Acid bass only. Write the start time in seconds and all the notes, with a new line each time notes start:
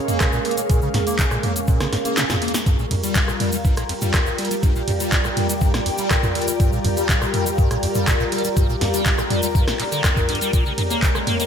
0.09 A#3
0.21 A#2
0.33 A#2
0.45 A#3
0.58 A#3
0.70 A#2
0.82 C#3
0.94 G#2
1.07 A#3
1.19 A#2
1.31 A#2
1.44 A#3
1.56 A#3
1.68 A#2
1.81 C#3
1.93 G#2
2.05 A#3
2.17 A#2
2.30 A#2
2.42 A#3
2.54 A#3
2.66 G2
2.79 A#2
2.91 F2
3.04 G3
3.16 G2
3.28 A#2
3.40 G3
3.53 G3
3.65 G2
3.77 A#2
3.89 F2
4.02 G3
4.14 G2
4.26 A#2
4.39 G3
4.51 G3
4.63 G2
4.76 A#2
4.88 F2
5.00 G3
5.12 G2
5.25 A#2
5.37 G3
5.49 G3
5.61 G2
5.74 A#2
5.86 F2
5.99 G3
6.11 G2
6.23 A#2
6.35 G3
6.48 G3
6.60 G2
6.73 A#2
6.85 F2
6.97 G3
7.09 G2
7.22 A#2
7.34 G3
7.46 G3
7.58 G2
7.71 A#2
7.83 F2
7.96 G3
8.08 G2
8.20 A#2
8.32 G3
8.45 G3
8.57 G2
8.69 A#2
8.81 F2
8.94 G3
9.06 G2
9.18 A#2
9.30 G3
9.43 G3
9.55 G2
9.67 A#2
9.79 A#2
9.92 D3
10.04 F2
10.17 G1
10.29 G2
10.41 G3
10.53 A#2
10.66 C#3
10.78 G#2
10.91 A#3
11.03 A#2
11.15 C#3
11.27 A#3
11.40 A#3